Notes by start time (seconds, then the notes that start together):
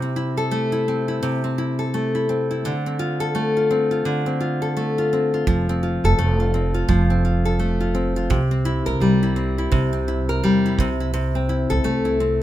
Already playing: C3 E4
0.02 C4
0.16 E4
0.37 A4
0.51 A3
0.72 E4
0.88 C4
1.08 E4
1.23 C3
1.44 C4
1.58 E4
1.79 A4
1.94 A3
2.15 E4
2.29 C4
2.51 E4
2.65 D3
2.86 C4
2.99 F4
3.20 A4
3.35 A3
3.57 F4
3.71 C4
3.91 F4
4.05 D3
4.26 C4
4.41 F4
4.62 A4
4.77 A3
4.98 F4
5.13 C4
5.34 F4
5.47 F1 F3, kick
5.69 C4
5.83 F4
6.04 F1 A4
6.18 F1 A3
6.40 F4
6.54 C4
6.74 F4
6.88 F1 F3, kick
7.10 C4
7.25 F4
7.45 A4
7.59 A3
7.81 F4
7.95 C4
8.16 F4
8.30 C2 C3, kick
8.51 C4
8.65 E4
8.86 C2 A#4
9.00 C2 G3
9.23 E4
9.36 C4
9.58 E4
9.72 C2 C3, kick
9.93 C4
10.08 E4
10.29 A#4
10.43 E2 G3
10.66 E4
10.78 C2 C3, kick
11.00 E4
11.14 C3
11.35 C4
11.49 E4
11.70 C2 A4
11.84 C2 A3
12.05 E4
12.20 C4